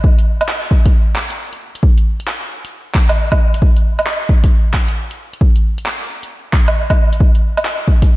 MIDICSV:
0, 0, Header, 1, 2, 480
1, 0, Start_track
1, 0, Tempo, 447761
1, 44, Time_signature, 4, 2, 24, 8
1, 8754, End_track
2, 0, Start_track
2, 0, Title_t, "Drums"
2, 41, Note_on_c, 9, 36, 126
2, 148, Note_off_c, 9, 36, 0
2, 199, Note_on_c, 9, 42, 33
2, 306, Note_off_c, 9, 42, 0
2, 438, Note_on_c, 9, 42, 58
2, 438, Note_on_c, 9, 77, 62
2, 521, Note_on_c, 9, 39, 107
2, 545, Note_off_c, 9, 42, 0
2, 545, Note_off_c, 9, 77, 0
2, 628, Note_off_c, 9, 39, 0
2, 761, Note_on_c, 9, 36, 111
2, 868, Note_off_c, 9, 36, 0
2, 917, Note_on_c, 9, 36, 110
2, 917, Note_on_c, 9, 42, 59
2, 1024, Note_off_c, 9, 42, 0
2, 1025, Note_off_c, 9, 36, 0
2, 1241, Note_on_c, 9, 39, 106
2, 1349, Note_off_c, 9, 39, 0
2, 1397, Note_on_c, 9, 42, 55
2, 1504, Note_off_c, 9, 42, 0
2, 1638, Note_on_c, 9, 42, 46
2, 1745, Note_off_c, 9, 42, 0
2, 1878, Note_on_c, 9, 42, 58
2, 1960, Note_on_c, 9, 36, 127
2, 1986, Note_off_c, 9, 42, 0
2, 2068, Note_off_c, 9, 36, 0
2, 2119, Note_on_c, 9, 42, 32
2, 2226, Note_off_c, 9, 42, 0
2, 2357, Note_on_c, 9, 42, 57
2, 2439, Note_on_c, 9, 39, 106
2, 2464, Note_off_c, 9, 42, 0
2, 2546, Note_off_c, 9, 39, 0
2, 2837, Note_on_c, 9, 42, 58
2, 2944, Note_off_c, 9, 42, 0
2, 3158, Note_on_c, 9, 39, 101
2, 3161, Note_on_c, 9, 36, 110
2, 3265, Note_off_c, 9, 39, 0
2, 3268, Note_off_c, 9, 36, 0
2, 3316, Note_on_c, 9, 42, 58
2, 3316, Note_on_c, 9, 77, 59
2, 3423, Note_off_c, 9, 42, 0
2, 3423, Note_off_c, 9, 77, 0
2, 3557, Note_on_c, 9, 36, 117
2, 3557, Note_on_c, 9, 42, 47
2, 3557, Note_on_c, 9, 77, 63
2, 3664, Note_off_c, 9, 36, 0
2, 3664, Note_off_c, 9, 42, 0
2, 3664, Note_off_c, 9, 77, 0
2, 3797, Note_on_c, 9, 42, 56
2, 3880, Note_on_c, 9, 36, 125
2, 3904, Note_off_c, 9, 42, 0
2, 3987, Note_off_c, 9, 36, 0
2, 4035, Note_on_c, 9, 42, 29
2, 4143, Note_off_c, 9, 42, 0
2, 4275, Note_on_c, 9, 42, 57
2, 4275, Note_on_c, 9, 77, 59
2, 4359, Note_on_c, 9, 39, 106
2, 4382, Note_off_c, 9, 42, 0
2, 4382, Note_off_c, 9, 77, 0
2, 4466, Note_off_c, 9, 39, 0
2, 4600, Note_on_c, 9, 36, 109
2, 4708, Note_off_c, 9, 36, 0
2, 4756, Note_on_c, 9, 42, 58
2, 4757, Note_on_c, 9, 36, 114
2, 4864, Note_off_c, 9, 36, 0
2, 4864, Note_off_c, 9, 42, 0
2, 5078, Note_on_c, 9, 39, 104
2, 5080, Note_on_c, 9, 36, 61
2, 5185, Note_off_c, 9, 39, 0
2, 5187, Note_off_c, 9, 36, 0
2, 5236, Note_on_c, 9, 42, 54
2, 5343, Note_off_c, 9, 42, 0
2, 5478, Note_on_c, 9, 42, 45
2, 5585, Note_off_c, 9, 42, 0
2, 5718, Note_on_c, 9, 42, 55
2, 5800, Note_on_c, 9, 36, 115
2, 5825, Note_off_c, 9, 42, 0
2, 5907, Note_off_c, 9, 36, 0
2, 5956, Note_on_c, 9, 42, 31
2, 6063, Note_off_c, 9, 42, 0
2, 6196, Note_on_c, 9, 42, 52
2, 6280, Note_on_c, 9, 39, 102
2, 6304, Note_off_c, 9, 42, 0
2, 6388, Note_off_c, 9, 39, 0
2, 6679, Note_on_c, 9, 42, 54
2, 6786, Note_off_c, 9, 42, 0
2, 7001, Note_on_c, 9, 36, 110
2, 7003, Note_on_c, 9, 39, 105
2, 7108, Note_off_c, 9, 36, 0
2, 7111, Note_off_c, 9, 39, 0
2, 7160, Note_on_c, 9, 42, 53
2, 7160, Note_on_c, 9, 77, 59
2, 7267, Note_off_c, 9, 42, 0
2, 7267, Note_off_c, 9, 77, 0
2, 7398, Note_on_c, 9, 36, 108
2, 7398, Note_on_c, 9, 42, 42
2, 7398, Note_on_c, 9, 77, 64
2, 7505, Note_off_c, 9, 36, 0
2, 7506, Note_off_c, 9, 42, 0
2, 7506, Note_off_c, 9, 77, 0
2, 7639, Note_on_c, 9, 42, 50
2, 7722, Note_on_c, 9, 36, 123
2, 7746, Note_off_c, 9, 42, 0
2, 7830, Note_off_c, 9, 36, 0
2, 7879, Note_on_c, 9, 42, 31
2, 7986, Note_off_c, 9, 42, 0
2, 8118, Note_on_c, 9, 42, 52
2, 8118, Note_on_c, 9, 77, 61
2, 8203, Note_on_c, 9, 39, 100
2, 8226, Note_off_c, 9, 42, 0
2, 8226, Note_off_c, 9, 77, 0
2, 8310, Note_off_c, 9, 39, 0
2, 8443, Note_on_c, 9, 36, 103
2, 8550, Note_off_c, 9, 36, 0
2, 8599, Note_on_c, 9, 36, 103
2, 8600, Note_on_c, 9, 42, 53
2, 8706, Note_off_c, 9, 36, 0
2, 8707, Note_off_c, 9, 42, 0
2, 8754, End_track
0, 0, End_of_file